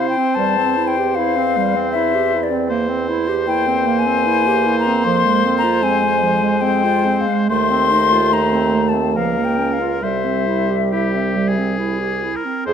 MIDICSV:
0, 0, Header, 1, 6, 480
1, 0, Start_track
1, 0, Tempo, 781250
1, 226, Time_signature, 3, 2, 24, 8
1, 4067, Tempo, 849858
1, 5507, Tempo, 877193
1, 7458, End_track
2, 0, Start_track
2, 0, Title_t, "Flute"
2, 0, Program_c, 0, 73
2, 57, Note_on_c, 0, 79, 78
2, 214, Note_on_c, 0, 81, 93
2, 223, Note_off_c, 0, 79, 0
2, 538, Note_on_c, 0, 79, 80
2, 547, Note_off_c, 0, 81, 0
2, 706, Note_on_c, 0, 77, 88
2, 716, Note_off_c, 0, 79, 0
2, 1175, Note_off_c, 0, 77, 0
2, 1178, Note_on_c, 0, 76, 86
2, 1495, Note_on_c, 0, 74, 72
2, 1504, Note_off_c, 0, 76, 0
2, 1654, Note_off_c, 0, 74, 0
2, 2133, Note_on_c, 0, 79, 94
2, 2450, Note_on_c, 0, 80, 89
2, 2459, Note_off_c, 0, 79, 0
2, 2942, Note_off_c, 0, 80, 0
2, 2947, Note_on_c, 0, 82, 84
2, 3099, Note_on_c, 0, 84, 97
2, 3108, Note_off_c, 0, 82, 0
2, 3424, Note_off_c, 0, 84, 0
2, 3428, Note_on_c, 0, 82, 88
2, 3582, Note_on_c, 0, 80, 91
2, 3591, Note_off_c, 0, 82, 0
2, 4061, Note_on_c, 0, 79, 88
2, 4070, Note_off_c, 0, 80, 0
2, 4400, Note_on_c, 0, 77, 74
2, 4408, Note_off_c, 0, 79, 0
2, 4560, Note_off_c, 0, 77, 0
2, 4563, Note_on_c, 0, 84, 95
2, 5035, Note_on_c, 0, 82, 80
2, 5043, Note_off_c, 0, 84, 0
2, 5348, Note_on_c, 0, 81, 67
2, 5357, Note_off_c, 0, 82, 0
2, 5507, Note_on_c, 0, 77, 69
2, 5515, Note_off_c, 0, 81, 0
2, 5658, Note_on_c, 0, 79, 64
2, 5667, Note_off_c, 0, 77, 0
2, 5814, Note_on_c, 0, 77, 65
2, 5822, Note_off_c, 0, 79, 0
2, 5971, Note_off_c, 0, 77, 0
2, 5974, Note_on_c, 0, 76, 70
2, 6920, Note_off_c, 0, 76, 0
2, 7458, End_track
3, 0, Start_track
3, 0, Title_t, "Oboe"
3, 0, Program_c, 1, 68
3, 0, Note_on_c, 1, 72, 49
3, 1481, Note_off_c, 1, 72, 0
3, 1655, Note_on_c, 1, 72, 62
3, 4539, Note_off_c, 1, 72, 0
3, 4560, Note_on_c, 1, 72, 54
3, 5339, Note_off_c, 1, 72, 0
3, 5501, Note_on_c, 1, 70, 46
3, 5980, Note_on_c, 1, 72, 45
3, 5988, Note_off_c, 1, 70, 0
3, 6420, Note_off_c, 1, 72, 0
3, 6460, Note_on_c, 1, 67, 55
3, 6773, Note_on_c, 1, 68, 52
3, 6781, Note_off_c, 1, 67, 0
3, 7254, Note_on_c, 1, 70, 50
3, 7262, Note_off_c, 1, 68, 0
3, 7412, Note_off_c, 1, 70, 0
3, 7415, Note_on_c, 1, 72, 58
3, 7458, Note_off_c, 1, 72, 0
3, 7458, End_track
4, 0, Start_track
4, 0, Title_t, "Clarinet"
4, 0, Program_c, 2, 71
4, 0, Note_on_c, 2, 64, 48
4, 106, Note_on_c, 2, 60, 54
4, 116, Note_off_c, 2, 64, 0
4, 226, Note_off_c, 2, 60, 0
4, 229, Note_on_c, 2, 55, 57
4, 352, Note_on_c, 2, 60, 53
4, 362, Note_off_c, 2, 55, 0
4, 473, Note_on_c, 2, 64, 57
4, 482, Note_off_c, 2, 60, 0
4, 602, Note_on_c, 2, 67, 54
4, 612, Note_off_c, 2, 64, 0
4, 723, Note_on_c, 2, 64, 63
4, 732, Note_off_c, 2, 67, 0
4, 845, Note_on_c, 2, 60, 54
4, 854, Note_off_c, 2, 64, 0
4, 966, Note_on_c, 2, 55, 59
4, 975, Note_off_c, 2, 60, 0
4, 1081, Note_on_c, 2, 60, 56
4, 1091, Note_off_c, 2, 55, 0
4, 1202, Note_on_c, 2, 64, 57
4, 1211, Note_off_c, 2, 60, 0
4, 1319, Note_on_c, 2, 67, 51
4, 1328, Note_off_c, 2, 64, 0
4, 1440, Note_on_c, 2, 64, 52
4, 1449, Note_off_c, 2, 67, 0
4, 1544, Note_on_c, 2, 60, 53
4, 1553, Note_off_c, 2, 64, 0
4, 1657, Note_off_c, 2, 60, 0
4, 1660, Note_on_c, 2, 58, 60
4, 1777, Note_on_c, 2, 60, 56
4, 1786, Note_off_c, 2, 58, 0
4, 1899, Note_on_c, 2, 64, 65
4, 1908, Note_off_c, 2, 60, 0
4, 2019, Note_on_c, 2, 67, 58
4, 2028, Note_off_c, 2, 64, 0
4, 2136, Note_on_c, 2, 64, 62
4, 2146, Note_off_c, 2, 67, 0
4, 2256, Note_on_c, 2, 60, 54
4, 2265, Note_off_c, 2, 64, 0
4, 2376, Note_on_c, 2, 58, 59
4, 2385, Note_off_c, 2, 60, 0
4, 2496, Note_on_c, 2, 60, 55
4, 2505, Note_off_c, 2, 58, 0
4, 2619, Note_on_c, 2, 64, 59
4, 2628, Note_off_c, 2, 60, 0
4, 2745, Note_on_c, 2, 67, 56
4, 2754, Note_off_c, 2, 64, 0
4, 2866, Note_on_c, 2, 64, 57
4, 2875, Note_off_c, 2, 67, 0
4, 2990, Note_on_c, 2, 60, 56
4, 2999, Note_off_c, 2, 64, 0
4, 3106, Note_off_c, 2, 60, 0
4, 3109, Note_on_c, 2, 53, 62
4, 3230, Note_on_c, 2, 56, 56
4, 3239, Note_off_c, 2, 53, 0
4, 3349, Note_on_c, 2, 60, 59
4, 3358, Note_off_c, 2, 56, 0
4, 3466, Note_on_c, 2, 65, 60
4, 3475, Note_off_c, 2, 60, 0
4, 3582, Note_on_c, 2, 60, 59
4, 3591, Note_off_c, 2, 65, 0
4, 3710, Note_on_c, 2, 56, 54
4, 3720, Note_off_c, 2, 60, 0
4, 3826, Note_on_c, 2, 53, 55
4, 3835, Note_off_c, 2, 56, 0
4, 3947, Note_on_c, 2, 56, 55
4, 3956, Note_off_c, 2, 53, 0
4, 4067, Note_on_c, 2, 60, 56
4, 4076, Note_off_c, 2, 56, 0
4, 4191, Note_on_c, 2, 65, 57
4, 4200, Note_off_c, 2, 60, 0
4, 4314, Note_on_c, 2, 60, 55
4, 4322, Note_off_c, 2, 65, 0
4, 4441, Note_on_c, 2, 56, 50
4, 4450, Note_off_c, 2, 60, 0
4, 4560, Note_off_c, 2, 56, 0
4, 4563, Note_on_c, 2, 57, 58
4, 4681, Note_on_c, 2, 60, 52
4, 4689, Note_off_c, 2, 57, 0
4, 4798, Note_on_c, 2, 63, 52
4, 4806, Note_off_c, 2, 60, 0
4, 4912, Note_on_c, 2, 65, 54
4, 4920, Note_off_c, 2, 63, 0
4, 5029, Note_on_c, 2, 63, 58
4, 5038, Note_off_c, 2, 65, 0
4, 5143, Note_on_c, 2, 60, 49
4, 5151, Note_off_c, 2, 63, 0
4, 5268, Note_on_c, 2, 57, 49
4, 5276, Note_off_c, 2, 60, 0
4, 5378, Note_on_c, 2, 60, 48
4, 5386, Note_off_c, 2, 57, 0
4, 5493, Note_off_c, 2, 60, 0
4, 5497, Note_on_c, 2, 53, 48
4, 5619, Note_on_c, 2, 58, 45
4, 5627, Note_off_c, 2, 53, 0
4, 5734, Note_on_c, 2, 61, 44
4, 5743, Note_off_c, 2, 58, 0
4, 5855, Note_on_c, 2, 65, 42
4, 5863, Note_off_c, 2, 61, 0
4, 5973, Note_off_c, 2, 65, 0
4, 5976, Note_on_c, 2, 55, 47
4, 6101, Note_on_c, 2, 60, 40
4, 6109, Note_off_c, 2, 55, 0
4, 6221, Note_on_c, 2, 64, 45
4, 6229, Note_off_c, 2, 60, 0
4, 6345, Note_on_c, 2, 67, 43
4, 6353, Note_off_c, 2, 64, 0
4, 6466, Note_on_c, 2, 64, 47
4, 6475, Note_off_c, 2, 67, 0
4, 6589, Note_on_c, 2, 60, 41
4, 6597, Note_off_c, 2, 64, 0
4, 6708, Note_on_c, 2, 55, 45
4, 6716, Note_off_c, 2, 60, 0
4, 6828, Note_on_c, 2, 60, 40
4, 6837, Note_off_c, 2, 55, 0
4, 6941, Note_on_c, 2, 64, 46
4, 6949, Note_off_c, 2, 60, 0
4, 7055, Note_on_c, 2, 67, 41
4, 7064, Note_off_c, 2, 64, 0
4, 7184, Note_on_c, 2, 64, 42
4, 7192, Note_off_c, 2, 67, 0
4, 7303, Note_on_c, 2, 60, 40
4, 7311, Note_off_c, 2, 64, 0
4, 7422, Note_off_c, 2, 60, 0
4, 7425, Note_on_c, 2, 68, 54
4, 7458, Note_off_c, 2, 68, 0
4, 7458, End_track
5, 0, Start_track
5, 0, Title_t, "French horn"
5, 0, Program_c, 3, 60
5, 0, Note_on_c, 3, 60, 52
5, 1958, Note_off_c, 3, 60, 0
5, 2130, Note_on_c, 3, 58, 61
5, 3586, Note_on_c, 3, 56, 60
5, 3595, Note_off_c, 3, 58, 0
5, 4563, Note_on_c, 3, 57, 65
5, 4572, Note_off_c, 3, 56, 0
5, 5507, Note_on_c, 3, 58, 49
5, 5516, Note_off_c, 3, 57, 0
5, 5828, Note_off_c, 3, 58, 0
5, 5979, Note_on_c, 3, 55, 54
5, 7226, Note_off_c, 3, 55, 0
5, 7420, Note_on_c, 3, 68, 71
5, 7458, Note_off_c, 3, 68, 0
5, 7458, End_track
6, 0, Start_track
6, 0, Title_t, "Bassoon"
6, 0, Program_c, 4, 70
6, 223, Note_on_c, 4, 40, 57
6, 3081, Note_off_c, 4, 40, 0
6, 3102, Note_on_c, 4, 41, 64
6, 4380, Note_off_c, 4, 41, 0
6, 4567, Note_on_c, 4, 39, 65
6, 5507, Note_on_c, 4, 37, 56
6, 5516, Note_off_c, 4, 39, 0
6, 5977, Note_off_c, 4, 37, 0
6, 5981, Note_on_c, 4, 36, 51
6, 7226, Note_off_c, 4, 36, 0
6, 7422, Note_on_c, 4, 41, 67
6, 7458, Note_off_c, 4, 41, 0
6, 7458, End_track
0, 0, End_of_file